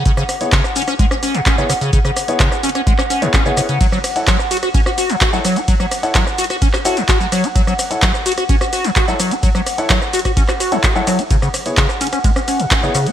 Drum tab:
RD |--------------------------------|--------------------------------|x---x---x---x---x---x---x---x---|x---x---x---x---x---x---x---x---|
HH |x---o-x-x---oxx-x---o-x-x---o-x-|x---o-x-x---oxx-x---o-x-x---o-x-|x---o-x-x---oxx-x---o-x-x---o-x-|x---o-x-x---oxx-x---o-x-x---o-x-|
SH |x-x-x-x-x-x-x-x-x-x-x-x-x-x-x-x-|x-x-x-x-x-x-x-x-x-x-x-x-x-x-x-x-|x-x-x-x-x-x-x-x-x-x-x-x-x-x-x-x-|x-x-x-x-x-x-x-x-x-x-x-x-x-x-x-x-|
CP |--------x---------------x-------|--------x---------x-----x-------|--------x---------------x-------|--------x---------x-----x-------|
SD |--r-r---r-r---r---r-r-------r---|--r-r---r-r---r---r-r-------r---|--r-r---r-r---r---r-r-------r---|--r-r---r-r---r---r-r-------r---|
BD |o-------o-------o-------o-------|o-------o-------o-------o-------|o-------o-------o-------o-------|o-------o-------o-------o-------|

RD |x---x---x---x---x---x---x---x---|x---x---x---x---x---x---x---x---|x---x---x---x---x---x---x---x---|
HH |x---o-x-x---oxx-x---o-x-x---o-x-|x---o-x-x---oxx-x---o-x-x---o-x-|x---o-x-x---oxx-x---o-x-x---o-x-|
SH |x-x-x-x-x-x-x-x-x-x-x-x-x-x-x-x-|x-x-x-x-x-x-x-x-x-x-x-x-x-x-x-x-|x-x-x-x-x-x-x-x-x-x-x-x-x-x-x-x-|
CP |--------x---------------x-------|--------x---------x-----x-------|--------x---------------x-------|
SD |--r-r---r-r---r---r-r-------r---|--r-r---r-r---r---r-r-------r---|--r-r---r-r---r---r-r-------r---|
BD |o-------o-------o-------o-------|o-------o-----o-o-------o-------|o-------o-------o-------o-------|